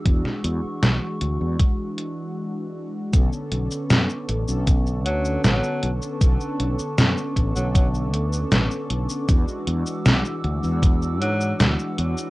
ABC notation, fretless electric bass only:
X:1
M:4/4
L:1/16
Q:1/4=78
K:Bdor
V:1 name="Fretless electric bass" clef=bass
E,, z E,, z B,,, z D,, E,, z8 | B,,, z B,,, z F,, z A,,, B,,,3 D,,2 A,,, z B,,, z | B,,, z B,,, z F,, z A,,, B,,,3 D,,2 A,,, z B,,, z | E,, z E,, z B,,, z D,, E,,3 G,,2 D,, z E,, z |]